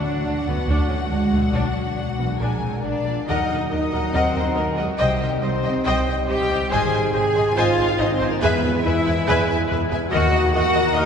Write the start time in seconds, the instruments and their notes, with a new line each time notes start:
Already playing: harp D3 E3 F#3 D4 D5, french horn section D4 F#4, violin section F#4 F#5
0.05 cello section D4
0.26 double bass section D2, viola section D4
0.47 double bass section D2, viola section A3, cello section B3
0.68 double bass section D2, cello section A3, french horn section D4 F#4, viola section D4
0.89 double bass section D2, viola section C#4
1.10 double bass section D2, cello section G#3, viola section D4
1.31 double bass section D2, viola section A3
1.36 harp B2
1.41 harp F#3
1.46 harp D4
1.50 double bass section B1, french horn section D4 F#4, viola section D4, harp D5
1.55 cello section F#3
1.96 double bass section B1, viola section D4
2.18 double bass section B1, cello section E3, viola section B3
2.24 harp A#2
2.28 harp G#3
2.32 harp D4
2.37 double bass section A#1, cello section F3, french horn section D4 G#4, viola section D4, harp A#4, violin section A#4 G#5
2.63 double bass section A#1, viola section C4
2.83 double bass section A#1, french horn section D4 G#4, viola section D4, cello section D4, violin section D5
3.06 double bass section A#1, viola section A#3, french horn section F4
3.28 double bass section D#2, harp D#3, trombone section F#3 D#4, cello section D#4, french horn section D#4, viola section A#4 D#5, violin section D#5 F#5, clarinet D#5, flute F#5
3.40 harp F#3
3.49 double bass section D#2, harp D#4, viola section A#4 D#5, violin section D#5 F#5
3.60 harp A#4
3.71 double bass section D#2, french horn section D#4, cello section D#4, harp F#4, viola section A#4 D#5, violin section A#4 D#5
3.83 harp D#5
3.93 double bass section D#2, viola section A#4 D#5, violin section D#5 F#5, harp A#5
4.04 harp F#5
4.13 double bass section D#2, french horn section C4, cello section C4, viola section A#4 D#5, violin section C5 D#5 F#5, clarinet D#5, flute F#5
4.26 harp F#5
4.34 double bass section D#2, viola section A#4 D#5, violin section D#5 F#5, harp A#5
4.48 harp F#4
4.55 double bass section D#2, cello section A#3, french horn section A#3, viola section A#4 D#5, violin section A#4 D#5, harp A#4
4.69 cello section G#3, french horn section G#3, harp D#4, violin section G#4
4.77 double bass section D#2, harp F#3, viola section A#4 D#5, violin section D#5 F#5
4.85 cello section F#3, french horn section F#3, violin section F#4
4.90 harp D#4
4.98 double bass section C2, harp C3, cello section G3, trombone section G3, french horn section G3, violin section G4 D#5 G5, viola section C5 D#5, clarinet D#5, flute G5
5.11 harp C4
5.20 double bass section C2, harp G3, viola section C5 D#5, violin section D#5 G5
5.33 harp D#4
5.42 double bass section C2, cello section C4, french horn section C4, viola section C5 D#5, violin section C5 D#5, harp C5
5.55 harp G4
5.64 double bass section C2, viola section C5 D#5, violin section D#5 G5, harp D#5
5.76 harp C6
5.86 double bass section C2, viola section C5 D#5, harp D#5, clarinet D#5, violin section D#5 G5, flute G5
5.97 harp C6
6.07 double bass section C2, viola section C5 D#5, harp D#5, violin section D#5 G5
6.20 harp C5
6.28 double bass section C2, harp D#4, french horn section G4, cello section G4, viola section C5 D#5, violin section C5 G5
6.32 violin section D#5
6.41 harp G3
6.50 double bass section C2, harp C4, viola section C5 D#5, violin section D#5 G5
6.62 harp G3
6.71 double bass section G#1, harp G#2, trombone section D#3 C4, cello section G#4, french horn section G#4, viola section C5, clarinet C5, violin section D#5 G#5, flute G#5
6.84 harp D#3
6.93 double bass section G#1, harp G#3, viola section C5, violin section D#5 G#5
7.06 harp D#4
7.13 double bass section G#1, cello section G#4, french horn section G#4, viola section C5, violin section C5 D#5 G#5, harp C5
7.27 harp G#4
7.35 double bass section G#1, viola section C5, violin section D#5 G#5, harp D#5
7.48 harp C6
7.57 double bass section G#1, cello section F4, french horn section F4, viola section C5, clarinet C5, violin section D#5 F5 G#5, harp D#5, flute G#5
7.69 harp C6
7.78 double bass section G#1, viola section C5, violin section D#5 G#5, harp D#5
7.90 harp C5
7.99 double bass section G#1, cello section D#4, harp D#4, french horn section D#4, viola section C5, violin section C5 D#5
8.12 harp G#3, french horn section C4, cello section C4, violin section C5
8.21 double bass section G#1, harp D#3, viola section C5, violin section D#5 G#5
8.27 french horn section A#3, cello section A#3, violin section A#4
8.34 harp G#3
8.39 double bass section E2, harp E3, trombone section G#3, french horn section B3, cello section B3, viola section G#4 B4, violin section B4 E5 G#5, flute G#5
8.44 trombone section E3, clarinet B4
8.55 harp G#3
8.63 double bass section E2, harp E4, viola section G#4 B4, violin section E5 G#5
8.75 harp B4
8.82 double bass section E2, french horn section E4, cello section E4, viola section G#4 B4, violin section E5
8.86 harp G#4, violin section B4 E5
8.97 harp E5
9.06 double bass section E2, viola section G#4 B4, violin section E5 G#5, harp B5
9.19 harp G#5
9.28 double bass section E2, viola section G#4 B4, clarinet B4, violin section E5 G#5, flute G#5
9.40 harp G#5
9.48 double bass section E2, viola section G#4 B4, violin section E5 G#5, harp B5
9.61 harp G#4
9.68 double bass section E2, viola section G#4 B4, harp B4, violin section B4
9.73 violin section E5
9.81 harp E4
9.90 double bass section E2, harp G#3, viola section G#4 B4, violin section E5 G#5
10.03 harp E4
10.09 double bass section D#2, french horn section F#4, cello section F#4, viola section A#4 D#5, flute D#5, violin section D#5 F#5
10.14 trombone section D#3 A#3, harp D#3, clarinet A#4
10.24 harp A#3
10.31 harp D#4, viola section A#4 D#5, violin section D#5
10.45 harp D#5
10.52 double bass section D#2, french horn section F#4, cello section F#4, viola section A#4 D#5, violin section D#5 F#5
10.56 harp A#4
10.66 harp D#5
10.74 viola section A#4 D#5, violin section D#5, harp D#6
10.87 harp A#5
10.93 double bass section D#2, french horn section D#4, cello section D#4, viola section A#4 D#5, clarinet A#4, violin section D#5, flute D#5, harp D#6